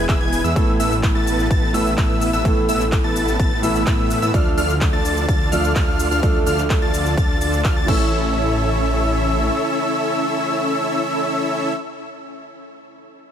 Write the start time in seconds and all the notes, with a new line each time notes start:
Already playing: E3 G#3 B3 G#4
0.09 E1 B3 E4 G#4 E5 E6, kick, clap, ride, shaker
0.21 E1 B3 E4 G#4 B4 G#5 G#6
0.33 open hi-hat, shaker
0.44 E2 B3 E4 G#4 B4 E5 E6, shaker
0.55 A1 A2 E3 A3 B3 E4 A4 B4 E5 E6, kick, ride, shaker
0.80 A1 B3 E4 A4 B4 E5 E6, open hi-hat, shaker
0.92 shaker
1.03 kick, clap, ride, shaker
1.15 A1 B3 E4 A4 B4 A5 A6
1.27 open hi-hat, shaker
1.39 shaker
1.51 A1 B3 E4 A4 B4 A5 A6, kick, ride, shaker
1.73 A1 A2 E3 A3 B3 E4 A4 B4 E5 E6, open hi-hat, shaker
1.86 shaker
1.98 A1 B3 E4 B4 E6, kick, clap, ride, shaker
2.21 open hi-hat, shaker
2.33 A1 B3 E4 A4 B4 E5 E6, shaker
2.44 A1 A2 E3 A3 B3 E4 A4 E5 E6, kick, ride, shaker
2.69 A1 B3 E4 A4 B4 E5 E6, open hi-hat, shaker
2.80 clap, shaker
2.92 kick, clap, ride, shaker
3.04 A1 B3 E4 A4 B4 A5 A6
3.16 open hi-hat, shaker
3.28 shaker
3.39 A1 B3 E4 B4 A6, kick, ride, shaker
3.62 A1 A2 E3 A3 B3 E4 A4 B4 E5 E6, open hi-hat, shaker
3.75 shaker
3.87 A2 E4 E5 E6, kick, clap, ride, shaker
4.10 open hi-hat, shaker
4.22 A2 B3 E4 A4 B4 E5 E6, shaker
4.33 D2 F3 A3 D4 F4 A4 D5 F5 F6, kick, ride, shaker
4.58 D2 D4 F4 A4 D5 F5 F6, open hi-hat, shaker
4.70 shaker
4.81 kick, clap, ride, shaker
4.93 D2 D4 F4 A4 D5 A5 A6
5.05 open hi-hat, shaker
5.17 shaker
5.28 D2 D4 F4 A4 D5 A5 A6, kick, ride, shaker
5.51 D2 F3 A3 D4 F4 A4 D5 F5 F6, open hi-hat, shaker
5.64 shaker
5.76 D2 D4 F4 D5, kick, clap, ride, shaker
5.99 open hi-hat, shaker
6.11 D2 D4 F4 A4 D5 F5 F6, shaker
6.22 D2 F3 A3 D4 A4 F6, kick, ride, shaker
6.47 D2 D4 F4 A4 D5 F5 F6, open hi-hat, shaker
6.58 clap, shaker
6.70 kick, clap, ride, shaker
6.82 D2 D4 F4 A4 D5 A5 A6
6.94 open hi-hat, shaker
7.06 shaker
7.17 D2 D4 F4 A4 D5 A6, kick, ride, shaker
7.41 D2 D4 F4 A4 D5 A5 A6, open hi-hat, shaker
7.53 shaker
7.64 D2 D4 A4 F6, kick, clap, ride, shaker
7.76 D2 D4 F4 A4 D5 A5 A6
7.86 A1 E3 A3 C#4 E4 A4 C#5 E5 E6, kick, crash